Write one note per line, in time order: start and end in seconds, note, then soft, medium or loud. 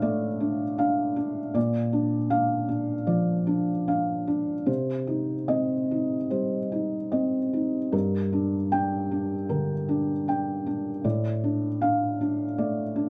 0.00 1.57 A2 medium
0.00 0.63 A3 soft
0.00 0.40 D4 medium
0.00 0.02 D5 medium
0.00 0.63 D5 medium
0.00 0.79 F5 medium
0.40 0.77 D4 soft
0.78 1.15 D4 soft
0.78 1.40 F5 soft
1.16 1.55 D4 soft
1.54 3.04 A#2 medium
1.54 2.16 D5 medium
1.93 2.29 D4 medium
2.30 2.67 D4 soft
2.30 2.92 F5 medium
2.68 3.31 D4 soft
3.07 3.71 F3 soft
3.07 3.70 D5 soft
3.47 3.86 D4 soft
3.88 4.26 D4 soft
3.88 4.52 F5 soft
4.27 4.68 D4 soft
4.66 6.27 C3 soft
4.66 5.33 C5 soft
5.07 5.74 D#4 soft
5.48 6.15 C4 soft
5.48 6.15 D#5 medium
5.91 6.56 D#4 soft
6.30 6.96 G3 soft
6.30 6.96 C5 soft
6.72 7.36 D#4 soft
7.12 7.77 C4 soft
7.12 7.77 D#5 soft
7.53 7.93 D#4 soft
7.92 9.45 G2 medium
7.92 8.55 A#4 soft
8.33 8.71 D4 soft
8.72 9.10 D4 soft
8.72 9.34 G5 medium
9.11 9.73 D4 soft
9.49 10.12 D3 soft
9.49 10.11 A#4 soft
9.89 10.26 D4 soft
10.28 10.65 D4 soft
10.28 10.90 G5 soft
10.66 11.05 D4 soft
11.04 12.54 A2 medium
11.04 11.66 D5 soft
11.44 11.80 D4 soft
11.82 12.19 D4 soft
11.82 12.43 F5 medium
12.21 12.82 D4 soft
12.58 13.09 A3 soft
12.58 13.09 D5 soft
12.96 13.09 D4 soft